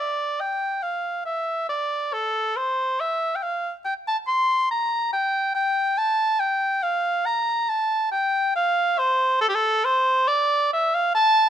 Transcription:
0.00 0.42 D5 medium
0.40 0.84 G5 medium
0.83 1.25 F5 medium
1.25 1.68 E5 medium
1.69 2.14 D5 medium
2.13 2.58 A4 medium
2.57 3.02 C5 medium
3.00 3.37 E5 medium
3.36 3.44 G5 soft
3.43 3.72 F5 medium
3.85 3.94 G5 medium
4.08 4.17 A5 medium
4.27 4.69 C6 medium
4.71 5.12 A#5 medium
5.13 5.54 G5 medium
5.55 5.99 G5 medium
5.98 6.41 A5 medium
6.40 6.84 G5 medium
6.83 7.27 F5 medium
7.26 7.70 A#5 medium
7.69 8.11 A5 medium
8.11 8.54 G5 medium
8.56 9.00 F5 medium
8.99 9.40 C5 medium
9.41 9.50 A4 loud
9.49 9.56 G4 medium
9.55 9.86 A4 loud
9.84 10.29 C5 medium
10.28 10.71 D5 loud
10.73 10.96 E5 medium
10.95 11.14 F5 medium
11.15 11.49 A5 loud

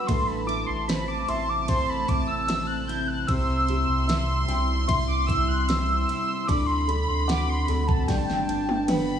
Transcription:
0.00 0.17 D4 medium
0.00 0.17 F#4 medium
0.00 0.10 D5 medium
0.07 0.65 A1 loud
0.07 3.28 A2 medium
0.07 6.45 C3 medium
0.07 3.24 A3 medium
0.07 3.26 A3 medium
0.07 6.45 C4 loud
0.07 3.32 B4 medium
0.07 3.28 A5 loud
0.07 0.29 C6 loud
0.07 kick loud
0.07 ride medium
0.27 0.46 B5 loud
0.47 2.04 E4 medium
0.47 1.28 E4 medium
0.47 0.66 D6 loud
0.47 ride medium
0.67 1.25 A1 loud
0.67 0.86 C6 medium
0.88 1.68 C4 medium
0.88 1.67 C5 medium
0.88 1.09 B5 medium
0.88 snare loud
0.88 ride medium
1.08 1.30 D6 medium
1.28 2.05 A1 loud
1.28 2.08 E4 medium
1.28 2.84 E5 medium
1.28 1.51 C6 medium
1.28 ride medium
1.49 1.68 D6 loud
1.68 2.48 C4 medium
1.68 3.25 C5 medium
1.68 1.91 C6 loud
1.68 kick medium
1.68 ride medium
1.89 2.10 B5 loud
2.08 3.25 A1 medium
2.08 2.88 E4 medium
2.08 2.29 D6 medium
2.08 kick medium
2.08 ride medium
2.27 2.47 E6 loud
2.47 4.08 C4 medium
2.47 3.26 A5 medium
2.47 2.68 E6 loud
2.47 snare loud
2.47 ride medium
2.67 2.89 F#6 medium
2.87 3.69 E4 medium
2.87 3.09 G6 loud
2.87 ride medium
3.08 3.29 F#6 loud
3.27 3.84 C2 loud
3.27 6.48 C3 loud
3.27 6.45 G3 medium
3.27 6.45 C4 medium
3.27 6.45 E4 loud
3.27 6.48 C6 loud
3.27 4.87 E6 loud
3.27 kick loud
3.27 ride medium
3.68 4.47 E4 medium
3.68 5.25 G4 medium
3.68 ride medium
3.88 4.44 C2 loud
4.08 4.86 E5 medium
4.08 snare loud
4.08 ride medium
4.48 4.85 C2 loud
4.48 5.27 E4 medium
4.48 6.04 G5 medium
4.48 ride medium
4.87 6.05 C2 loud
4.87 5.69 C4 medium
4.87 6.44 E5 medium
4.87 4.97 C6 loud
4.87 kick loud
4.87 ride medium
5.07 5.28 D6 loud
5.27 6.08 E4 medium
5.27 5.50 E6 loud
5.27 kick medium
5.27 ride medium
5.48 5.69 F#6 loud
5.68 6.57 C4 medium
5.68 6.49 E6 loud
5.68 snare loud
5.68 ride medium
6.09 6.57 E4 medium
6.09 ride medium
6.47 7.05 D2 loud
6.47 9.19 D3 medium
6.47 8.07 D3 medium
6.47 8.07 A3 medium
6.47 8.07 C4 medium
6.47 8.05 D4 medium
6.47 8.07 F#4 loud
6.47 8.17 A4 medium
6.47 8.04 B5 loud
6.47 6.68 D6 loud
6.47 kick loud
6.47 ride medium
6.66 6.90 C6 loud
6.88 7.69 D4 medium
6.88 7.67 A4 medium
6.88 7.09 B5 loud
6.88 ride medium
7.08 7.65 D2 loud
7.08 7.27 C6 medium
7.28 8.17 C4 medium
7.28 8.06 F#5 medium
7.28 7.51 D6 loud
7.28 snare loud
7.28 ride medium
7.49 7.70 C6 medium
7.68 8.06 D2 loud
7.68 8.49 D4 medium
7.68 8.07 A4 medium
7.68 7.89 B5 medium
7.68 ride medium
7.88 8.09 A5 medium
7.88 kick loud
8.08 8.46 G1 loud
8.08 9.19 G2 medium
8.08 9.19 G3 medium
8.08 9.19 D4 medium
8.08 9.19 A4 medium
8.08 9.19 B4 loud
8.08 9.19 G5 loud
8.08 8.88 A5 medium
8.08 kick medium
8.08 snare medium
8.08 ride medium
8.30 snare medium
8.48 9.19 G1 medium
8.48 9.19 D4 medium
8.48 ride medium
8.69 high tom medium
8.88 9.19 B3 medium
8.88 9.19 B4 medium
8.88 9.19 B5 loud
8.88 mid tom loud
8.88 ride medium

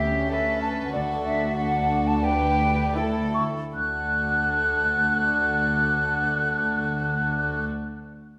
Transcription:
0.00 0.89 D2 soft
0.00 0.92 C#4 soft
0.00 0.30 G4 soft
0.00 0.31 G4 soft
0.00 0.29 E5 medium
0.30 0.93 A4 soft
0.30 0.93 B4 soft
0.30 0.61 E5 medium
0.62 0.69 A5 medium
0.92 3.46 D2 soft
0.92 1.54 D2 soft
0.92 1.57 D4 soft
0.92 2.22 F#4 soft
0.92 1.56 A4 soft
0.92 1.00 D5 medium
1.25 1.57 E5 soft
1.57 2.94 D4 soft
1.57 2.23 A4 soft
1.57 2.09 F#5 medium
2.07 2.26 A5 medium
2.24 2.97 G4 soft
2.24 2.97 B4 soft
2.24 2.96 G5 medium
2.96 3.50 E4 soft
2.96 3.50 A4 soft
2.96 3.05 G5 soft
3.34 3.43 C#6 soft
3.73 7.65 D2 soft
3.73 7.66 D2 soft
3.73 7.65 D4 soft
3.73 7.65 F#4 soft
3.73 7.65 A4 soft
3.73 7.65 F#6 soft

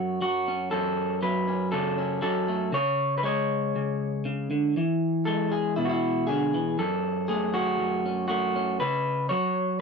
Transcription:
0.00 0.71 F#2 medium
0.00 0.20 F#3 medium
0.00 0.48 C#4 soft
0.00 0.21 F#4 medium
0.21 0.69 F#3 soft
0.21 0.71 F#4 medium
0.48 1.25 C#4 soft
0.71 2.72 F#2 medium
0.71 1.22 A4 medium
1.22 2.21 F#3 medium
1.22 1.71 B4 medium
1.48 1.97 C#4 soft
1.72 2.23 C#3 medium
1.72 2.21 A4 medium
1.98 4.77 C#4 soft
2.22 2.70 F#3 medium
2.22 2.73 A4 medium
2.48 2.73 A3 soft
2.72 3.74 C#3 medium
2.72 3.17 C#5 loud
3.18 3.24 B4 medium
3.23 4.73 G#3 medium
3.23 4.78 C#5 medium
3.76 4.24 C#3 medium
4.25 4.50 C#3 medium
4.51 4.76 D3 medium
4.77 6.29 E3 medium
5.25 6.54 G#3 medium
5.25 5.52 A4 medium
5.52 5.76 G#4 medium
5.76 6.76 B2 medium
5.76 5.88 E4 medium
5.85 6.43 F#4 medium
5.89 6.27 E4 medium
6.27 6.54 D3 medium
6.27 6.78 G#4 medium
6.54 6.80 E3 medium
6.79 7.78 F#2 medium
6.79 7.53 A4 medium
7.28 8.28 A3 medium
7.28 8.05 G#4 medium
7.54 8.27 F#4 medium
7.79 8.81 F#2 medium
8.06 8.55 C#4 soft
8.28 8.77 A3 medium
8.28 8.80 F#4 medium
8.56 8.83 C#4 soft
8.80 9.32 C#3 medium
8.80 9.29 B4 medium
9.29 9.79 F#3 medium
9.29 9.79 C#5 medium

